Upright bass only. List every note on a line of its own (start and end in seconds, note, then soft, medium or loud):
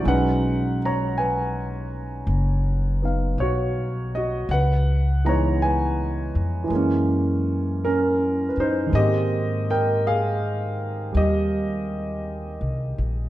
0.05 2.24 B1 medium
2.27 3.34 F#1 medium
3.38 4.45 B1 medium
4.49 6.31 C#2 medium
6.35 6.68 F2 medium
6.70 8.53 F#2 medium
8.57 8.89 F#2 medium
8.93 11.09 G#2 medium
11.14 12.57 D#2 medium
12.61 12.95 C2 medium
12.98 13.29 A#1 medium